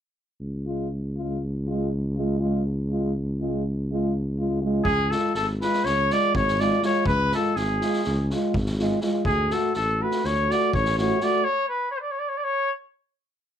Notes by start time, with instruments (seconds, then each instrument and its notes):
0.40 tuba C#2
0.67 euphonium G#3, french horn F4
1.17 euphonium G#3, french horn F4
1.68 euphonium G#3, french horn F4
2.16 euphonium G#3, french horn F4
2.40 euphonium G#3, french horn F4
2.90 euphonium G#3, french horn F4
3.41 euphonium G#3, french horn F4
3.92 euphonium G#3, french horn F4
4.39 euphonium G#3, french horn F4
4.62 euphonium G#3, french horn F4
4.84 tuba C#2, trumpet G#4, kick
5.11 euphonium G#3, french horn F4, trumpet A4, snare
5.34 tuba G#1, trumpet A4, snare
5.61 euphonium G#3, french horn F4, trumpet B4, snare
5.73 snare
5.85 tuba C#2, trumpet C#5, snare
6.10 euphonium G#3, french horn F4, trumpet D5, snare
6.34 tuba G#1, trumpet C#5, kick
6.48 snare
6.60 euphonium G#3, french horn F4, trumpet D5, snare
6.83 euphonium G#3, french horn F4, trumpet C#5, snare
7.06 tuba C#2, trumpet B4, kick
7.32 euphonium G#3, french horn F4, trumpet A4, snare
7.55 tuba G#1, trumpet G#4, snare
7.81 euphonium G#3, french horn F4, snare
7.93 snare
8.04 tuba C#2, snare
8.30 euphonium G#3, french horn F4, snare
8.54 tuba G#1, kick
8.66 snare
8.79 euphonium G#3, french horn F4, snare
9.01 euphonium G#3, french horn F4, snare
9.25 tuba D2, trumpet G#4, kick
9.51 euphonium A3, french horn F#4, trumpet A4, snare
9.74 tuba A1, trumpet A4, snare
10.01 euphonium A3, french horn F#4, trumpet B4
10.11 snare
10.24 tuba D2, trumpet C#5, snare
10.50 euphonium A3, french horn F#4, trumpet D5, snare
10.73 tuba A1, trumpet C#5, kick
10.85 snare
10.98 euphonium A3, french horn F#4, trumpet C#5, snare
11.21 euphonium A3, french horn F#4, trumpet D5, snare
11.44 trumpet C#5
11.68 trumpet B4
11.91 trumpet C#5
12.01 trumpet D5
12.11 trumpet C#5
12.19 trumpet D5
12.29 trumpet C#5
12.37 trumpet D5
12.43 trumpet C#5